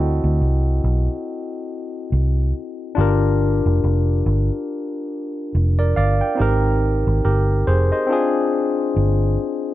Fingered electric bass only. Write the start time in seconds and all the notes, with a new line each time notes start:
Already playing: D2
0.24 D2
0.41 C2
0.84 B1
2.12 C2
2.98 G1
3.66 F1
3.84 F1
4.26 G1
5.55 F1
5.97 G1
6.40 G#1
7.07 G#1
7.25 G1
7.67 F1
8.96 G1